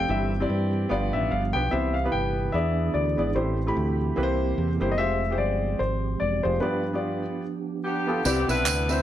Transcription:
0.00 0.88 C4 medium
0.00 2.51 G4 medium
0.00 1.18 G5 loud
0.08 0.44 G1 loud
0.08 0.70 G2 medium
0.08 0.91 E3 medium
0.08 0.91 G3 medium
0.08 0.30 C4 medium
0.08 0.30 E4 medium
0.08 0.30 G4 medium
0.08 0.31 E5 medium
0.40 0.88 C4 medium
0.40 0.89 E4 medium
0.40 0.89 G4 medium
0.40 0.89 D5 medium
0.50 0.85 G2 medium
0.89 1.11 G1 medium
0.89 1.51 G2 medium
0.89 1.72 F3 medium
0.89 1.40 B3 medium
0.89 3.33 B3 medium
0.89 1.72 D4 medium
0.89 1.41 F4 medium
0.89 1.41 G4 medium
0.89 1.41 D5 medium
1.13 1.29 A1 medium
1.13 1.32 E5 medium
1.31 1.52 G1 medium
1.31 1.53 F5 medium
1.53 1.70 B1 medium
1.53 1.65 B3 medium
1.53 1.65 F4 medium
1.53 1.66 G4 medium
1.53 1.66 B4 medium
1.53 1.72 G5 medium
1.71 2.07 C2 loud
1.71 2.33 C3 medium
1.71 2.53 C3 medium
1.71 3.34 E3 medium
1.71 1.93 B3 medium
1.71 1.93 E4 medium
1.71 1.93 G4 medium
1.71 1.94 C5 medium
1.71 1.96 E5 medium
1.94 2.13 F5 medium
2.04 2.52 B3 medium
2.04 2.52 E4 medium
2.04 2.52 G4 medium
2.04 2.53 B4 medium
2.12 2.48 G1 medium
2.12 2.50 G5 medium
2.52 2.89 E2 medium
2.52 3.14 E3 medium
2.52 3.04 B3 medium
2.52 3.35 D4 medium
2.52 3.04 E4 medium
2.52 3.04 G#4 medium
2.52 3.35 G#4 medium
2.52 3.05 D5 medium
2.52 2.95 E5 medium
2.94 3.15 D2 medium
2.94 3.36 D5 medium
3.17 3.33 G#1 medium
3.17 3.28 B3 medium
3.17 3.29 E4 medium
3.17 3.29 G#4 medium
3.17 3.29 D5 medium
3.35 3.70 A1 medium
3.35 3.96 A2 medium
3.35 4.97 E3 medium
3.35 3.56 A3 medium
3.35 4.17 A3 medium
3.35 6.59 C4 medium
3.35 3.57 E4 medium
3.35 4.17 G4 medium
3.35 3.57 G4 medium
3.35 4.13 C5 medium
3.35 3.57 C5 medium
3.66 4.15 A3 medium
3.66 4.15 E4 medium
3.66 4.15 G4 medium
3.66 4.16 B5 medium
3.77 4.11 D2 medium
4.16 4.52 C2 medium
4.16 4.77 C3 medium
4.16 4.67 A#3 medium
4.16 4.98 A#3 medium
4.16 4.67 E4 medium
4.16 4.67 G4 medium
4.16 6.60 G4 medium
4.16 4.23 B4 medium
4.23 4.70 C5 loud
4.58 4.78 E2 medium
4.80 4.99 G1 medium
4.80 4.91 A#3 medium
4.80 4.91 E4 medium
4.80 4.92 G4 medium
4.80 4.92 C5 medium
4.92 4.98 D#5 medium
4.97 5.40 F1 loud
4.97 8.22 F3 medium
4.97 5.19 G#3 medium
4.97 6.60 G#3 medium
4.97 5.19 F4 medium
4.97 5.20 G4 medium
4.97 5.20 C5 medium
4.97 5.36 E5 loud
5.30 5.78 G#3 medium
5.30 5.78 F4 medium
5.30 5.79 G4 medium
5.30 5.79 C5 medium
5.38 5.74 G1 medium
5.38 5.81 D5 medium
5.79 6.15 G#1 medium
5.79 6.18 C5 medium
6.20 6.41 E1 medium
6.20 6.45 D5 medium
6.43 6.60 F1 medium
6.43 6.54 G#3 medium
6.43 6.55 F4 medium
6.43 6.55 G4 medium
6.43 6.62 C5 medium
6.43 6.55 C5 medium
6.60 7.22 G2 medium
6.60 6.82 B3 medium
6.60 8.23 B3 medium
6.60 8.23 D4 medium
6.60 6.82 F4 medium
6.60 6.83 G4 medium
6.60 8.23 G4 medium
6.60 7.21 B4 medium
6.60 6.83 D5 medium
6.93 7.41 B3 medium
6.93 7.42 F4 medium
6.93 7.42 G4 medium
6.93 7.42 D5 medium
7.84 8.23 B3 medium
7.84 8.23 D4 medium
7.84 8.22 G4 medium
8.07 8.18 B3 medium
8.07 8.18 F4 medium
8.07 8.18 G4 medium
8.07 8.19 A4 medium
8.24 8.45 C2 loud
8.24 8.85 C3 medium
8.24 9.02 B3 medium
8.24 8.39 C4 medium
8.24 8.39 E4 medium
8.24 8.48 E4 medium
8.24 8.47 G4 loud
8.24 8.39 B4 medium
8.24 9.02 D5 medium
8.24 8.40 D5 medium
8.24 9.02 E5 medium
8.24 9.02 G5 medium
8.24 tambourine medium
8.48 8.66 B1 medium
8.48 8.70 C4 medium
8.48 9.02 D4 medium
8.48 8.70 E4 medium
8.48 9.02 E4 medium
8.48 8.86 B4 loud
8.48 8.71 B4 medium
8.48 8.71 E5 medium
8.48 tambourine medium
8.66 9.02 D2 medium
8.66 clap loud
8.66 tambourine loud
8.89 9.02 C4 medium
8.89 9.02 E4 medium
8.89 9.02 B4 medium
8.89 9.02 C5 loud
8.89 9.02 E5 medium
8.89 tambourine medium

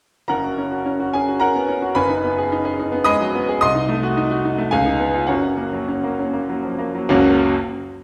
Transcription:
0.28 1.91 F#1 soft
0.28 1.92 F#2 soft
0.28 1.09 A#4 medium
0.28 1.09 F#5 medium
0.28 1.12 A#5 medium
0.44 0.66 F#4 soft
0.58 0.80 C#4 soft
0.72 0.94 F#4 soft
0.86 1.08 C#4 soft
1.00 1.22 F#4 soft
1.13 1.36 C#4 soft
1.13 1.40 G#4 soft
1.13 1.41 G#5 medium
1.28 1.50 F#4 soft
1.40 1.63 C#4 soft
1.40 1.92 A#4 medium
1.40 1.92 F#5 medium
1.40 1.95 A#5 medium
1.55 1.69 B3 soft
1.69 1.91 C#4 soft
1.82 1.96 F#4 medium
1.95 3.57 F#1 medium
1.95 3.57 F#2 medium
1.95 3.02 B4 medium
1.95 3.02 G#5 medium
1.95 3.04 B5 medium
2.10 2.32 D#4 medium
2.24 2.46 B3 medium
2.38 2.60 G#4 medium
2.52 2.74 D#4 medium
2.65 2.87 G#4 medium
2.80 3.01 D#4 medium
2.92 3.14 B3 medium
3.04 3.28 G#3 medium
3.04 3.57 D#5 medium
3.04 3.57 B5 medium
3.04 3.59 D#6 loud
3.21 3.34 F#3 medium
3.35 3.57 B3 medium
3.49 3.62 G#4 medium
3.61 4.69 C2 medium
3.61 4.68 D#5 medium
3.61 4.68 C6 medium
3.61 4.71 D#6 loud
3.75 3.97 D#4 medium
3.89 4.11 A3 medium
4.03 4.25 F#4 medium
4.17 4.39 D#4 medium
4.31 4.52 F#4 medium
4.45 4.67 D#4 medium
4.58 4.72 A3 medium
4.71 5.28 C#2 medium
4.71 5.25 G#4 medium
4.71 5.25 F5 medium
4.71 5.28 G#5 medium
4.86 5.09 D#4 medium
5.00 5.23 B3 medium
5.14 5.29 F4 soft
5.27 7.04 F#1 medium
5.27 7.05 F#2 medium
5.27 6.44 F#4 medium
5.27 6.44 C#5 medium
5.27 6.47 F#5 medium
5.43 5.67 C#4 soft
5.57 5.82 A#3 soft
5.73 5.97 F#3 soft
5.88 6.12 C#4 soft
6.04 6.27 A#3 soft
6.19 6.42 C#4 soft
6.33 6.57 A#3 soft
6.49 6.73 F#3 soft
6.64 6.79 F3 soft
6.79 7.03 A#3 soft
6.95 7.08 F#3 soft
7.09 7.42 F#1 medium
7.09 7.43 C#2 medium
7.09 7.43 F#3 medium
7.09 7.43 A#3 medium
7.09 7.43 C#4 medium
7.09 7.43 F#4 medium

